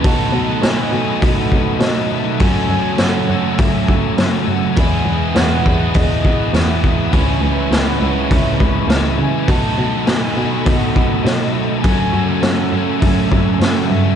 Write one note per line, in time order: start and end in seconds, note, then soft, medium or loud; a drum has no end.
0.02 0.30 B2 medium
0.02 0.92 B2 medium
0.02 2.41 F#3 medium
0.02 2.39 D#4 medium
0.02 4.72 A4 medium
0.02 2.37 D#5 medium
0.02 0.64 A5 loud
0.02 2.38 B5 medium
0.02 kick loud
0.02 open hi-hat soft
0.07 0.92 D#3 medium
0.07 0.95 A3 medium
0.07 0.93 B3 loud
0.07 0.93 F#4 loud
0.33 0.59 B2 medium
0.62 0.89 B2 medium
0.62 1.24 G#5 loud
0.62 snare loud
0.62 open hi-hat medium
0.92 1.18 B2 medium
0.92 1.81 D#3 medium
0.92 1.81 A3 medium
0.92 1.80 B3 medium
0.92 1.87 F#4 medium
0.97 1.82 B2 medium
1.22 1.74 B2 medium
1.22 1.83 F#5 medium
1.22 kick loud
1.22 open hi-hat soft
1.52 kick medium
1.80 2.32 B2 medium
1.80 2.40 B2 medium
1.80 2.40 D#3 medium
1.80 2.12 D#5 medium
1.80 snare loud
1.80 open hi-hat soft
1.85 2.41 A3 medium
1.85 2.41 B3 medium
1.85 2.42 F#4 medium
2.10 2.43 E5 medium
2.39 3.27 F#2 medium
2.39 2.66 F#2 medium
2.39 3.27 C#3 medium
2.39 3.31 F#3 medium
2.39 3.28 A3 medium
2.39 3.28 C#4 medium
2.39 3.28 F#4 loud
2.39 4.74 G#5 medium
2.39 3.03 G#5 loud
2.39 4.73 E6 medium
2.39 kick loud
2.39 open hi-hat medium
2.69 2.95 F#2 medium
2.98 3.24 F#2 medium
2.98 3.62 F#5 medium
2.98 snare loud
2.98 open hi-hat medium
3.29 3.55 F#2 medium
3.29 4.17 F#2 medium
3.29 4.17 C#3 medium
3.29 4.17 F#3 medium
3.29 4.16 A3 medium
3.29 4.16 C#4 medium
3.29 4.16 F#4 medium
3.58 3.85 F#2 medium
3.58 4.21 E5 medium
3.58 kick loud
3.58 open hi-hat medium
3.88 4.14 F#2 medium
3.88 kick medium
4.18 4.43 F#2 medium
4.18 4.75 F#2 medium
4.18 4.76 C#3 medium
4.18 4.76 F#3 medium
4.18 4.76 A3 medium
4.18 4.77 C#4 medium
4.18 4.77 F#4 medium
4.18 snare loud
4.18 open hi-hat soft
4.47 4.73 F#2 medium
4.47 4.80 F#5 medium
4.76 5.63 E2 medium
4.76 5.02 E2 medium
4.76 5.64 B2 loud
4.76 5.65 E3 medium
4.76 5.65 G#3 medium
4.76 5.64 B3 medium
4.76 5.63 E4 loud
4.76 7.10 G#4 medium
4.76 7.10 F#5 medium
4.76 5.38 G#5 loud
4.76 7.11 D#6 medium
4.76 kick loud
4.76 open hi-hat soft
5.06 5.31 E2 medium
5.35 5.61 E2 medium
5.35 5.96 F#5 loud
5.35 snare loud
5.35 open hi-hat medium
5.64 5.91 E2 medium
5.64 6.53 B2 medium
5.64 6.52 E3 medium
5.64 6.52 G#3 medium
5.64 6.56 B3 medium
5.64 6.51 E4 medium
5.64 kick medium
5.68 6.53 E2 medium
5.94 6.46 E2 medium
5.94 6.55 D#5 medium
5.94 kick loud
5.94 open hi-hat medium
6.25 kick medium
6.53 7.05 E2 medium
6.53 7.11 E2 medium
6.53 7.10 B2 medium
6.53 7.11 E3 medium
6.53 7.11 G#3 medium
6.53 7.13 B3 medium
6.53 6.83 E5 medium
6.53 snare loud
6.53 open hi-hat soft
6.58 7.13 E4 medium
6.84 7.14 E5 medium
6.84 kick medium
7.11 7.38 C#2 medium
7.11 7.98 C#3 medium
7.11 7.99 E3 medium
7.11 7.99 G#3 medium
7.11 7.99 C#4 loud
7.11 7.99 E4 medium
7.11 9.45 B4 medium
7.11 9.45 E5 medium
7.11 7.75 G#5 loud
7.11 9.46 C#6 medium
7.11 kick loud
7.11 open hi-hat soft
7.42 7.67 C#2 medium
7.71 7.97 C#2 medium
7.71 8.34 F#5 medium
7.71 snare loud
7.71 open hi-hat medium
8.01 8.27 C#2 medium
8.01 8.88 C#3 medium
8.01 8.88 E3 medium
8.01 8.88 G#3 medium
8.01 8.88 C#4 medium
8.01 8.87 E4 medium
8.31 8.57 C#2 medium
8.31 8.93 E5 medium
8.31 kick loud
8.31 open hi-hat soft
8.60 8.86 C#2 medium
8.60 kick medium
8.88 9.14 C#2 medium
8.88 9.46 C#3 medium
8.88 9.47 E3 medium
8.88 9.47 G#3 medium
8.88 9.48 C#4 medium
8.88 snare loud
8.88 open hi-hat medium
8.93 9.48 E4 medium
9.18 9.44 C#3 medium
9.18 9.50 G#5 medium
9.47 10.34 B2 medium
9.47 9.74 B2 medium
9.47 10.39 F#3 medium
9.47 10.38 A3 loud
9.47 10.36 D#4 loud
9.47 14.15 A4 medium
9.47 11.82 D#5 medium
9.47 10.08 A5 loud
9.47 11.82 B5 medium
9.47 kick loud
9.47 open hi-hat medium
9.52 10.36 F#4 medium
9.78 10.04 B2 medium
10.06 10.33 B2 medium
10.06 10.67 G#5 loud
10.06 snare loud
10.06 open hi-hat medium
10.37 10.63 B2 medium
10.37 11.24 B2 medium
10.37 11.26 F#3 medium
10.37 11.24 A3 medium
10.37 11.23 D#4 medium
10.37 11.29 F#4 medium
10.65 11.17 B2 medium
10.65 11.25 F#5 medium
10.65 kick loud
10.65 open hi-hat soft
10.96 kick medium
11.23 11.82 B2 medium
11.23 11.76 B2 medium
11.23 11.86 F#3 medium
11.23 11.53 D#5 medium
11.23 snare loud
11.23 open hi-hat soft
11.27 11.83 A3 medium
11.27 11.84 D#4 medium
11.27 11.87 F#4 medium
11.52 11.81 E5 medium
11.80 12.41 G#5 loud
11.84 12.71 F#2 medium
11.84 12.10 F#2 medium
11.84 12.71 C#3 medium
11.84 12.74 F#3 medium
11.84 12.72 A3 medium
11.84 12.73 C#4 medium
11.84 12.72 F#4 medium
11.84 14.15 G#5 medium
11.84 14.15 E6 medium
11.84 kick loud
11.84 open hi-hat medium
12.13 12.39 F#2 medium
12.40 12.68 F#2 medium
12.40 12.98 F#5 medium
12.40 snare loud
12.40 open hi-hat medium
12.72 12.98 F#2 medium
12.72 13.60 F#3 medium
12.72 13.60 A3 medium
12.72 13.64 C#4 medium
12.72 13.59 F#4 medium
12.76 13.60 F#2 medium
12.76 13.60 C#3 medium
12.99 13.28 F#2 medium
12.99 13.58 E5 medium
12.99 kick loud
12.99 open hi-hat medium
13.32 13.57 F#2 medium
13.32 kick medium
13.60 13.86 F#2 medium
13.60 14.15 F#2 medium
13.60 14.15 C#3 medium
13.60 14.15 F#3 medium
13.60 14.15 A3 medium
13.60 snare loud
13.60 open hi-hat medium
13.64 14.15 C#4 medium
13.64 14.15 F#4 medium
13.88 14.15 G2 medium
13.88 14.15 E5 medium